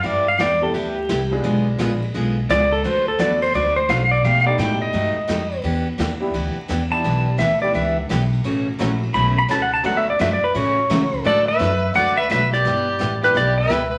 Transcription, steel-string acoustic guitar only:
X:1
M:4/4
L:1/16
Q:"Swing" 1/4=171
K:D
V:1 name="Steel-string acoustic guitar"
[G,B,EG]2 z2 [G,B,EG] z3 [G,B,EG]2 z2 [G,B,EG] z3 | [D,^G,B,^E^G]2 z2 [D,G,B,EG] z3 [D,G,B,EG]2 z2 [D,G,B,EG] z3 | [D,F,A,DFB]2 z2 [D,F,A,DFB] z3 [D,F,A,DFB]2 z2 [D,F,A,DFB] z3 | [B,,G,A,^DG]2 z2 [B,,G,A,DG] z3 [B,,G,A,DG]2 z2 [B,,G,A,DG] z3 |
[E,B,DG]2 z2 [E,B,DG] z3 [E,B,DG]2 z2 [E,B,DG] z3 | [E,B,DG]2 z2 [E,B,DG] z3 [E,B,DG]2 z2 [E,B,DG] z3 | [C,E,A,CF]2 z2 [C,E,A,CF] z3 [C,E,A,CF]2 z2 [C,E,A,CF] z3 | [D,F,A,DFB]2 z2 [D,F,A,DFB] z3 [C,E,A,CF]2 z2 [C,E,A,CF] z3 |
[D,F,A,DFB]2 z2 [D,F,A,DFB] z3 [D,F,A,DFB]2 z2 [D,F,A,DFB] z3 | [G,B,EG]2 z2 [G,B,EG] z3 [G,B,EG]2 z2 [G,B,EG] z3 |]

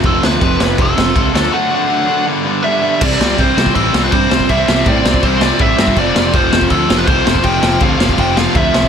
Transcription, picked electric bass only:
X:1
M:4/4
L:1/8
Q:1/4=162
K:G
V:1 name="Picked electric bass" clef=bass
=F,,, D,, F,,, F,,, F,,, F,,, ^C,, D,, | z8 | [K:C] C,, C,, C,, C,, A,,, C,, G,, C,, | C,, C,, A,, C,, C,,2 A,,, G,, |
F,,, F,,, F,,, F,,, D,, F,,, C,, F,,, | F,,, F,,, D,, F,,, F,,,2 D,, C,, |]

